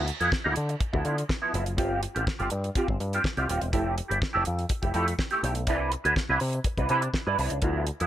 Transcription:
0.07 muted clean electric guitar stroke, closed hi-hat
0.20 F2 F3 B3 E4, closed hi-hat
0.32 muted clean electric guitar stroke, kick, snare
0.44 D2 F3 B3 E4
0.56 D3, closed hi-hat
0.69 muted clean electric guitar stroke, closed hi-hat
0.79 muted clean electric guitar stroke, kick, closed hi-hat
0.93 D2 F3 B3 E4, kick
1.05 D3 F3 B3 E4, closed hi-hat
1.17 muted clean electric guitar stroke, closed hi-hat
1.29 muted clean electric guitar stroke, kick, snare
1.42 F3 B3 E4
1.53 F#1 F3 B3 E4, closed hi-hat
1.66 muted clean electric guitar stroke, closed hi-hat
1.77 G1 C4 F4 G4, kick, closed hi-hat
2.02 muted clean electric guitar stroke, closed hi-hat
2.15 A1 C4 F4 G4, closed hi-hat
2.27 kick, snare
2.39 G1 C4 F4 G4, closed hi-hat
2.50 G2, muted clean electric guitar stroke, closed hi-hat
2.64 muted clean electric guitar stroke, closed hi-hat
2.75 C4 F4 G4, kick, closed hi-hat
2.88 G1, muted clean electric guitar stroke, kick
3.00 G2, muted clean electric guitar stroke, closed hi-hat
3.13 C4 F4 G4, closed hi-hat
3.24 muted clean electric guitar stroke, kick, snare
3.37 C2 C4 F4 G4, closed hi-hat
3.49 D#1 C4 F4 G4, closed hi-hat
3.61 E1, muted clean electric guitar stroke, closed hi-hat
3.72 F1 A3 E4 G4, kick, closed hi-hat
3.97 muted clean electric guitar stroke, closed hi-hat
4.08 G1 A3 E4 G4, closed hi-hat
4.20 muted clean electric guitar stroke, kick, snare
4.33 F1 A3 E4 G4
4.45 F2, muted clean electric guitar stroke, closed hi-hat
4.59 muted clean electric guitar stroke, closed hi-hat
4.69 muted clean electric guitar stroke, kick, closed hi-hat
4.82 F1 A3 E4 G4, kick, closed hi-hat
4.94 F2 A3 E4 G4, closed hi-hat
5.08 muted clean electric guitar stroke, closed hi-hat
5.19 muted clean electric guitar stroke, kick, snare
5.30 A3 E4 G4, closed hi-hat
5.43 B1 A3 E4 G4, closed hi-hat
5.55 muted clean electric guitar stroke, closed hi-hat
5.67 C2 D4 E4 B4, kick, closed hi-hat
5.92 muted clean electric guitar stroke, closed hi-hat
6.04 D2 D4 E4 B4, closed hi-hat
6.15 muted clean electric guitar stroke, kick, snare
6.29 C2 D4 E4 B4
6.40 C3, muted clean electric guitar stroke, open hi-hat
6.53 muted clean electric guitar stroke, closed hi-hat
6.64 muted clean electric guitar stroke, kick, closed hi-hat
6.78 C2 D4 E4 B4, kick, closed hi-hat
6.89 C3 D4 E4 B4, closed hi-hat
7.02 muted clean electric guitar stroke, closed hi-hat
7.14 muted clean electric guitar stroke, kick, snare
7.27 G2 D4 E4 B4
7.38 C2 D4 E4 B4, open hi-hat
7.50 C#2, muted clean electric guitar stroke, closed hi-hat
7.62 D2 F3 B3 E4, kick, closed hi-hat
7.87 muted clean electric guitar stroke, closed hi-hat
8.00 F2 F3 B3 E4, closed hi-hat

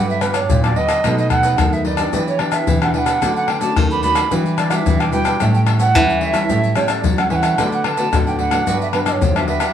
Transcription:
Already playing: G2 F#3 B3 D4 F#4 G4 B4 D5
0.10 E5, pandeiro, maracas
0.21 F#3 B3 D4 F#4 G4 B4 D5, pandeiro, tamborim, maracas
0.34 G4 B4 C#5 D5, pandeiro, tamborim, maracas
0.50 A#2 D3, pandeiro, maracas, surdo
0.64 F#3 B3 D4 G4 B4 D5, pandeiro, tamborim, maracas
0.76 F#4 G4 B4 D5 D#5, pandeiro
0.88 F#4 G4 B4 D5, pandeiro, tamborim, maracas
1.03 B2 F#3 A3 D#4 A4 B4 D#5, pandeiro, tamborim, maracas, surdo
1.18 D#5, pandeiro, maracas
1.30 D#4 A4 B4 D#5 F#5, pandeiro, tamborim, maracas, surdo
1.43 D#4 A4 B4 D#5, pandeiro, maracas
1.58 F#2 D#3 F#3 A3 D#4, pandeiro, tamborim, maracas, surdo
1.73 A4 B4 D#5 E5, pandeiro, maracas
1.85 D#4 A4 B4 D5 D#5, pandeiro
1.97 B3 D4 G4 A4 B4 D#5, pandeiro, tamborim, maracas
2.13 E3 D4 G4 B4 E5, pandeiro, maracas, surdo
2.27 C#5, pandeiro, maracas
2.39 B3 D4 G4 B4 D5 E5, pandeiro, tamborim
2.52 G4 B4 E5, pandeiro, tamborim, maracas
2.67 B2 E3, pandeiro, maracas, surdo
2.82 B3 D4 G4 B4 E5 F#5, pandeiro, tamborim, maracas
2.94 D4 G4 B4 E5 G#5, pandeiro
2.98 F#5
3.06 D4 G4 B4 E5, pandeiro, tamborim, maracas
3.22 D3 A3 C#4 D4 F#4 A4 B4 D5, pandeiro, tamborim, maracas, surdo
3.36 F#5, pandeiro, maracas
3.48 D4 A4 B4 D5 G5, pandeiro, tamborim
3.61 A3 C#4 D4 F#4 A4 B4 D5 A5, pandeiro, maracas
3.76 D#3, pandeiro, tamborim, maracas, surdo
3.91 A4 B4 D5 B5, pandeiro, maracas
4.03 A3 C#4 D4 F#4 A4 B4 D5 B5, pandeiro, maracas
4.15 A4 B4 D5, pandeiro, tamborim, maracas
4.31 E3 G3 D4 E4 F#4 G4 B4 D5, pandeiro, maracas, surdo
4.46 pandeiro, maracas
4.57 E4 G4 B4 D5, pandeiro, tamborim, maracas
4.70 G3 D4 F#4 G4 B4 D5 F#5, pandeiro, tamborim, maracas
4.75 E5
4.86 B2 E3, pandeiro, maracas, surdo
5.00 G4 B4 D5 G5, pandeiro, tamborim, maracas
5.12 G3 D4 E4 F#4 G4 B4 D5 G5, pandeiro, maracas
5.25 E4 G4 B4 D5, pandeiro, tamborim, maracas
5.40 A2 G3 C#4 E4 G4 A4 C#5 E5, pandeiro, tamborim, maracas, surdo
5.54 G5, pandeiro, maracas
5.67 G4 A4 C#5 E5, pandeiro, tamborim, maracas
5.79 G4 A4 C#5 E5 F#5, pandeiro, maracas
5.95 E3 G3 C#4 E4, pandeiro, tamborim, maracas, surdo
6.09 A4 C#5 E5, pandeiro, maracas
6.21 G4 A4 C#5 E5, pandeiro
6.34 G3 C#4 E4 A4 C#5 E5, pandeiro, tamborim, maracas
6.49 A2 G4 A4 C#5 E5, pandeiro, maracas, surdo
6.63 pandeiro, maracas
6.76 G3 C#4 E4 G4 A4 C#5 E5, pandeiro, tamborim, maracas
6.88 A4 C#5 D5 E5, pandeiro, tamborim, maracas
7.04 E3 F#3, pandeiro, maracas, surdo
7.18 G3 C#4 E4 A4 C#5 E5 F#5, pandeiro, tamborim, maracas
7.30 E3 G4 A4 C#5 E5 G#5, pandeiro
7.35 F#5
7.43 G4 A4 C#5 E5, pandeiro, tamborim, maracas
7.58 D3 A3 B3 D4 F#4 B4 D5 F#5, pandeiro, tamborim, maracas, surdo
7.72 F#5, pandeiro, maracas
7.84 D4 B4 D5 F#5 A5, pandeiro, tamborim
7.97 A3 B3 D4 F#4 B4 D5 F#5, pandeiro, maracas
8.13 A2 D3 A3 B3 F#4, pandeiro, tamborim, maracas, surdo
8.27 B4 D5 F#5 G5, pandeiro, maracas
8.38 D4 B4 D5 F#5, pandeiro
8.51 F#3 B3 D4 B4 D5 F#5, pandeiro, tamborim, maracas
8.67 G2 F#4 G4 B4 D5, pandeiro, maracas, surdo
8.81 E5, pandeiro, maracas
8.93 F#3 B3 D4 F#4 G4 B4 D5, pandeiro, tamborim
9.06 G4 B4 D5 D#5, pandeiro, tamborim, maracas
9.12 C#5
9.21 F2 D3, pandeiro, maracas, surdo
9.35 F#3 B3 D4 G4 B4 D5 E5, pandeiro, tamborim, maracas
9.47 F#4 G4 B4 D5 E5, pandeiro
9.60 F#4 G4 B4 D5, pandeiro, tamborim, maracas

